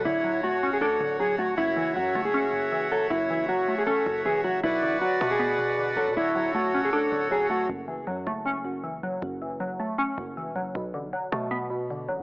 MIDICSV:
0, 0, Header, 1, 5, 480
1, 0, Start_track
1, 0, Key_signature, 3, "minor"
1, 0, Tempo, 382166
1, 63, Time_signature, 4, 2, 24, 8
1, 15357, End_track
2, 0, Start_track
2, 0, Title_t, "Accordion"
2, 0, Program_c, 0, 21
2, 0, Note_on_c, 0, 66, 81
2, 0, Note_on_c, 0, 78, 90
2, 64, Note_on_c, 0, 73, 74
2, 1983, Note_on_c, 0, 76, 77
2, 5773, Note_off_c, 0, 66, 0
2, 5773, Note_off_c, 0, 73, 0
2, 5773, Note_off_c, 0, 78, 0
2, 5785, Note_off_c, 0, 76, 0
2, 5823, Note_on_c, 0, 66, 81
2, 5823, Note_on_c, 0, 71, 73
2, 5823, Note_on_c, 0, 74, 75
2, 5823, Note_on_c, 0, 78, 91
2, 7724, Note_off_c, 0, 66, 0
2, 7724, Note_off_c, 0, 71, 0
2, 7724, Note_off_c, 0, 74, 0
2, 7743, Note_on_c, 0, 66, 81
2, 7743, Note_on_c, 0, 69, 74
2, 7743, Note_on_c, 0, 73, 74
2, 9625, Note_off_c, 0, 78, 0
2, 9644, Note_off_c, 0, 66, 0
2, 9644, Note_off_c, 0, 69, 0
2, 9644, Note_off_c, 0, 73, 0
2, 15357, End_track
3, 0, Start_track
3, 0, Title_t, "Clean electric guitar"
3, 0, Program_c, 1, 27
3, 67, Note_on_c, 1, 64, 109
3, 516, Note_off_c, 1, 64, 0
3, 551, Note_on_c, 1, 66, 85
3, 893, Note_off_c, 1, 66, 0
3, 921, Note_on_c, 1, 68, 74
3, 1016, Note_off_c, 1, 68, 0
3, 1021, Note_on_c, 1, 69, 91
3, 1473, Note_off_c, 1, 69, 0
3, 1511, Note_on_c, 1, 68, 82
3, 1728, Note_off_c, 1, 68, 0
3, 1746, Note_on_c, 1, 66, 74
3, 1966, Note_off_c, 1, 66, 0
3, 1981, Note_on_c, 1, 64, 108
3, 2433, Note_off_c, 1, 64, 0
3, 2470, Note_on_c, 1, 66, 95
3, 2812, Note_off_c, 1, 66, 0
3, 2827, Note_on_c, 1, 68, 70
3, 3611, Note_off_c, 1, 68, 0
3, 3665, Note_on_c, 1, 69, 79
3, 3885, Note_off_c, 1, 69, 0
3, 3898, Note_on_c, 1, 64, 106
3, 4352, Note_off_c, 1, 64, 0
3, 4380, Note_on_c, 1, 66, 85
3, 4727, Note_off_c, 1, 66, 0
3, 4753, Note_on_c, 1, 68, 76
3, 4851, Note_off_c, 1, 68, 0
3, 4856, Note_on_c, 1, 69, 91
3, 5310, Note_off_c, 1, 69, 0
3, 5347, Note_on_c, 1, 68, 87
3, 5566, Note_off_c, 1, 68, 0
3, 5579, Note_on_c, 1, 66, 85
3, 5802, Note_off_c, 1, 66, 0
3, 5821, Note_on_c, 1, 64, 110
3, 6273, Note_off_c, 1, 64, 0
3, 6299, Note_on_c, 1, 66, 90
3, 6646, Note_off_c, 1, 66, 0
3, 6669, Note_on_c, 1, 68, 74
3, 7453, Note_off_c, 1, 68, 0
3, 7496, Note_on_c, 1, 69, 81
3, 7720, Note_off_c, 1, 69, 0
3, 7748, Note_on_c, 1, 64, 108
3, 8197, Note_off_c, 1, 64, 0
3, 8232, Note_on_c, 1, 66, 85
3, 8573, Note_off_c, 1, 66, 0
3, 8601, Note_on_c, 1, 68, 71
3, 8698, Note_off_c, 1, 68, 0
3, 8703, Note_on_c, 1, 69, 92
3, 9154, Note_off_c, 1, 69, 0
3, 9191, Note_on_c, 1, 68, 83
3, 9408, Note_off_c, 1, 68, 0
3, 9427, Note_on_c, 1, 66, 75
3, 9646, Note_off_c, 1, 66, 0
3, 15357, End_track
4, 0, Start_track
4, 0, Title_t, "Synth pluck"
4, 0, Program_c, 2, 84
4, 61, Note_on_c, 2, 50, 103
4, 303, Note_on_c, 2, 54, 85
4, 543, Note_on_c, 2, 57, 95
4, 792, Note_on_c, 2, 61, 88
4, 1026, Note_on_c, 2, 62, 102
4, 1246, Note_off_c, 2, 50, 0
4, 1261, Note_on_c, 2, 50, 82
4, 1487, Note_off_c, 2, 54, 0
4, 1502, Note_on_c, 2, 54, 90
4, 1723, Note_off_c, 2, 57, 0
4, 1738, Note_on_c, 2, 57, 82
4, 1979, Note_on_c, 2, 42, 95
4, 1981, Note_off_c, 2, 57, 0
4, 1982, Note_off_c, 2, 50, 0
4, 1983, Note_off_c, 2, 54, 0
4, 1984, Note_off_c, 2, 62, 0
4, 1988, Note_off_c, 2, 61, 0
4, 2217, Note_on_c, 2, 52, 88
4, 2456, Note_on_c, 2, 54, 86
4, 2704, Note_on_c, 2, 57, 85
4, 2940, Note_on_c, 2, 61, 106
4, 3162, Note_off_c, 2, 42, 0
4, 3178, Note_on_c, 2, 42, 82
4, 3403, Note_off_c, 2, 52, 0
4, 3418, Note_on_c, 2, 52, 85
4, 3649, Note_off_c, 2, 54, 0
4, 3664, Note_on_c, 2, 54, 84
4, 3889, Note_off_c, 2, 42, 0
4, 3904, Note_off_c, 2, 57, 0
4, 3904, Note_on_c, 2, 42, 94
4, 4131, Note_off_c, 2, 52, 0
4, 4141, Note_off_c, 2, 61, 0
4, 4146, Note_on_c, 2, 52, 83
4, 4366, Note_off_c, 2, 54, 0
4, 4381, Note_on_c, 2, 54, 95
4, 4624, Note_on_c, 2, 57, 83
4, 4860, Note_on_c, 2, 61, 106
4, 5090, Note_off_c, 2, 42, 0
4, 5106, Note_on_c, 2, 42, 84
4, 5332, Note_off_c, 2, 52, 0
4, 5347, Note_on_c, 2, 52, 89
4, 5565, Note_off_c, 2, 54, 0
4, 5580, Note_on_c, 2, 54, 89
4, 5822, Note_off_c, 2, 54, 0
4, 5822, Note_off_c, 2, 61, 0
4, 5824, Note_off_c, 2, 42, 0
4, 5824, Note_off_c, 2, 57, 0
4, 5825, Note_off_c, 2, 52, 0
4, 5827, Note_on_c, 2, 47, 96
4, 6062, Note_on_c, 2, 50, 81
4, 6301, Note_on_c, 2, 54, 95
4, 6540, Note_on_c, 2, 57, 82
4, 6775, Note_on_c, 2, 59, 105
4, 7004, Note_off_c, 2, 47, 0
4, 7019, Note_on_c, 2, 47, 83
4, 7256, Note_off_c, 2, 50, 0
4, 7271, Note_on_c, 2, 50, 86
4, 7485, Note_off_c, 2, 54, 0
4, 7500, Note_on_c, 2, 54, 77
4, 7724, Note_off_c, 2, 50, 0
4, 7739, Note_off_c, 2, 59, 0
4, 7739, Note_on_c, 2, 50, 104
4, 7741, Note_off_c, 2, 47, 0
4, 7742, Note_off_c, 2, 54, 0
4, 7742, Note_off_c, 2, 57, 0
4, 7981, Note_on_c, 2, 54, 89
4, 8221, Note_on_c, 2, 57, 94
4, 8471, Note_on_c, 2, 61, 85
4, 8703, Note_on_c, 2, 62, 105
4, 8925, Note_off_c, 2, 50, 0
4, 8940, Note_on_c, 2, 50, 83
4, 9166, Note_off_c, 2, 54, 0
4, 9181, Note_on_c, 2, 54, 92
4, 9402, Note_off_c, 2, 57, 0
4, 9417, Note_on_c, 2, 57, 81
4, 9658, Note_on_c, 2, 42, 92
4, 9660, Note_off_c, 2, 57, 0
4, 9662, Note_off_c, 2, 50, 0
4, 9662, Note_off_c, 2, 54, 0
4, 9663, Note_off_c, 2, 62, 0
4, 9667, Note_off_c, 2, 61, 0
4, 9897, Note_on_c, 2, 52, 81
4, 10137, Note_on_c, 2, 54, 88
4, 10385, Note_on_c, 2, 57, 85
4, 10621, Note_on_c, 2, 61, 104
4, 10844, Note_off_c, 2, 42, 0
4, 10859, Note_on_c, 2, 42, 82
4, 11084, Note_off_c, 2, 52, 0
4, 11099, Note_on_c, 2, 52, 87
4, 11331, Note_off_c, 2, 54, 0
4, 11346, Note_on_c, 2, 54, 80
4, 11570, Note_off_c, 2, 42, 0
4, 11584, Note_off_c, 2, 57, 0
4, 11585, Note_on_c, 2, 42, 93
4, 11812, Note_off_c, 2, 52, 0
4, 11822, Note_off_c, 2, 61, 0
4, 11827, Note_on_c, 2, 52, 82
4, 12046, Note_off_c, 2, 54, 0
4, 12061, Note_on_c, 2, 54, 93
4, 12304, Note_on_c, 2, 57, 83
4, 12540, Note_on_c, 2, 61, 104
4, 12770, Note_off_c, 2, 42, 0
4, 12785, Note_on_c, 2, 42, 80
4, 13012, Note_off_c, 2, 52, 0
4, 13027, Note_on_c, 2, 52, 89
4, 13244, Note_off_c, 2, 54, 0
4, 13259, Note_on_c, 2, 54, 85
4, 13501, Note_off_c, 2, 54, 0
4, 13501, Note_off_c, 2, 61, 0
4, 13504, Note_off_c, 2, 42, 0
4, 13504, Note_off_c, 2, 57, 0
4, 13505, Note_off_c, 2, 52, 0
4, 13506, Note_on_c, 2, 47, 93
4, 13742, Note_on_c, 2, 50, 77
4, 13980, Note_on_c, 2, 54, 94
4, 14220, Note_on_c, 2, 57, 79
4, 14457, Note_on_c, 2, 59, 102
4, 14684, Note_off_c, 2, 47, 0
4, 14699, Note_on_c, 2, 47, 82
4, 14937, Note_off_c, 2, 50, 0
4, 14952, Note_on_c, 2, 50, 86
4, 15164, Note_off_c, 2, 54, 0
4, 15179, Note_on_c, 2, 54, 78
4, 15357, Note_off_c, 2, 47, 0
4, 15357, Note_off_c, 2, 50, 0
4, 15357, Note_off_c, 2, 54, 0
4, 15357, Note_off_c, 2, 57, 0
4, 15357, Note_off_c, 2, 59, 0
4, 15357, End_track
5, 0, Start_track
5, 0, Title_t, "808-style bass"
5, 0, Program_c, 3, 38
5, 63, Note_on_c, 3, 26, 110
5, 1023, Note_on_c, 3, 38, 101
5, 1042, Note_off_c, 3, 26, 0
5, 1251, Note_off_c, 3, 38, 0
5, 1263, Note_on_c, 3, 26, 107
5, 1954, Note_off_c, 3, 26, 0
5, 1983, Note_on_c, 3, 30, 110
5, 2463, Note_on_c, 3, 42, 100
5, 2482, Note_off_c, 3, 30, 0
5, 2691, Note_off_c, 3, 42, 0
5, 2703, Note_on_c, 3, 30, 104
5, 3855, Note_off_c, 3, 30, 0
5, 3903, Note_on_c, 3, 30, 117
5, 4594, Note_off_c, 3, 30, 0
5, 5103, Note_on_c, 3, 30, 105
5, 5470, Note_on_c, 3, 28, 98
5, 5489, Note_off_c, 3, 30, 0
5, 5647, Note_on_c, 3, 30, 99
5, 5665, Note_off_c, 3, 28, 0
5, 5814, Note_off_c, 3, 30, 0
5, 5823, Note_on_c, 3, 35, 111
5, 6063, Note_on_c, 3, 33, 104
5, 6082, Note_off_c, 3, 35, 0
5, 6190, Note_on_c, 3, 35, 102
5, 6209, Note_off_c, 3, 33, 0
5, 6297, Note_off_c, 3, 35, 0
5, 6543, Note_on_c, 3, 47, 106
5, 7503, Note_on_c, 3, 33, 102
5, 7522, Note_off_c, 3, 47, 0
5, 7630, Note_on_c, 3, 47, 102
5, 7649, Note_off_c, 3, 33, 0
5, 7738, Note_off_c, 3, 47, 0
5, 7743, Note_on_c, 3, 26, 113
5, 8703, Note_on_c, 3, 38, 101
5, 8722, Note_off_c, 3, 26, 0
5, 8931, Note_off_c, 3, 38, 0
5, 8944, Note_on_c, 3, 26, 103
5, 9635, Note_off_c, 3, 26, 0
5, 9663, Note_on_c, 3, 30, 108
5, 10143, Note_on_c, 3, 42, 94
5, 10162, Note_off_c, 3, 30, 0
5, 10371, Note_off_c, 3, 42, 0
5, 10383, Note_on_c, 3, 30, 104
5, 11535, Note_off_c, 3, 30, 0
5, 11583, Note_on_c, 3, 30, 115
5, 12274, Note_off_c, 3, 30, 0
5, 12783, Note_on_c, 3, 30, 106
5, 13151, Note_on_c, 3, 28, 98
5, 13169, Note_off_c, 3, 30, 0
5, 13327, Note_on_c, 3, 30, 101
5, 13346, Note_off_c, 3, 28, 0
5, 13494, Note_off_c, 3, 30, 0
5, 13503, Note_on_c, 3, 35, 112
5, 13743, Note_on_c, 3, 33, 105
5, 13762, Note_off_c, 3, 35, 0
5, 13870, Note_on_c, 3, 35, 100
5, 13889, Note_off_c, 3, 33, 0
5, 13977, Note_off_c, 3, 35, 0
5, 14223, Note_on_c, 3, 47, 100
5, 15183, Note_on_c, 3, 33, 99
5, 15202, Note_off_c, 3, 47, 0
5, 15309, Note_on_c, 3, 47, 97
5, 15328, Note_off_c, 3, 33, 0
5, 15357, Note_off_c, 3, 47, 0
5, 15357, End_track
0, 0, End_of_file